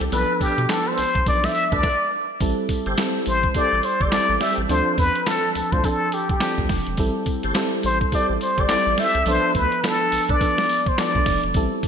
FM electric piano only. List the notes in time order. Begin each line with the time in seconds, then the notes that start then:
Already playing: G3 C4 E4 A4
0.12 F3 B3 D4 A4
0.69 F3 B3 D4 A4
1.26 F3 B3 D4 A4
2.40 G3 C4 E4 A4
2.98 G3 C4 E4 A4
3.55 G3 C4 E4 A4
4.12 G3 C4 E4 A4
4.70 F3 C4 D4 A4
5.27 F3 C4 D4 A4
5.83 F3 C4 D4 A4
6.41 F3 C4 D4 A4
6.99 G3 C4 E4 A4
7.55 G3 C4 E4 A4
8.12 G3 C4 E4 A4
8.69 G3 C4 E4 A4
9.26 F3 B3 D4 A4
9.83 F3 B3 D4 A4
10.41 F3 B3 D4 A4
10.98 F3 B3 D4 A4
11.56 G3 C4 E4 A4